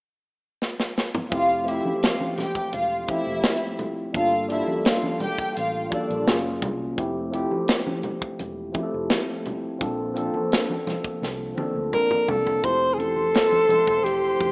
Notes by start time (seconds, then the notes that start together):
0.62 snare
0.80 snare
0.98 snare
1.15 mid tom
1.29 F1 F3 A3 C4 E4 F4 G4 F5, kick, closed hi-hat, muted conga
1.65 F3 A3 C4 E4 F4 G4 E5, closed hi-hat
1.85 high conga
2.03 F4 F5, snare, closed hi-hat, muted conga
2.21 high conga
2.37 G4 G5, snare, closed hi-hat, high conga, low conga
2.55 kick, closed hi-hat
2.73 E1 F4 F5, closed hi-hat
3.07 F3 A3 C4 E4 G4 E5, kick, closed hi-hat, high conga
3.27 E1
3.43 snare, closed hi-hat, muted conga
3.79 closed hi-hat, low conga
4.13 G1 G3 A#3 D4 F4 A4 F5, kick, closed hi-hat
4.49 G3 A#3 D4 E4 F4 A4 E5, closed hi-hat, muted conga
4.68 high conga
4.85 F4 F5, snare, closed hi-hat, muted conga
5.03 high conga
5.20 G4 G5, closed hi-hat, high conga, low conga
5.38 kick
5.57 A1 F4 F5, closed hi-hat
5.90 G3 A#3 D4 F4 A4 D5, kick, closed hi-hat, muted conga, high conga
6.10 A#1, closed hi-hat
6.25 F#1 F#3 A#3 C#4 F4, snare, closed hi-hat
6.30 G#4
6.62 C2, kick, closed hi-hat, low conga
6.96 F1 F3 A3 C4 E4, kick, closed hi-hat, muted conga
7.00 G4
7.31 F3 A3 C4 E4, closed hi-hat, muted conga
7.35 G4
7.51 high conga
7.68 snare, closed hi-hat, muted conga
7.87 high conga
8.03 closed hi-hat, high conga, low conga
8.22 kick
8.39 E1, closed hi-hat, muted conga
8.72 F3 A3 C4 E4, kick, closed hi-hat, muted conga, high conga
8.76 G4
8.83 A4
8.94 F1
9.10 snare, closed hi-hat, muted conga
9.45 closed hi-hat, muted conga, low conga
9.79 A#1 F3 A#3 C4 D4, kick, closed hi-hat, low conga
9.83 A4
10.14 F3 A#3 C4 D4 A4, closed hi-hat, muted conga
10.34 high conga
10.52 snare, closed hi-hat, muted conga
10.70 high conga
10.87 snare, closed hi-hat, high conga, low conga
11.04 kick, closed hi-hat
11.22 C2, snare, muted conga
11.55 F3 A#3 C4 D4 A4, high tom, high conga
11.75 D2
11.93 A#4 D5, mid tom
12.11 A#4, mid tom
12.28 C2 A4, floor tom, muted conga, low conga
12.46 A4, floor tom
12.62 F1 F3 A3 C4 E4 G4 C5 C6, kick, closed hi-hat, muted conga
12.94 G#4, muted conga, high conga
12.99 A4, closed hi-hat
13.16 high conga
13.34 snare, closed hi-hat, muted conga
13.52 high conga
13.67 F3 A3 C4 E4 A4, muted fingered electric bass stroke, closed hi-hat, muted conga, high conga, low conga
13.87 E1, kick
14.04 G4, closed hi-hat, muted conga
14.40 F1, kick, closed hi-hat, muted conga, high conga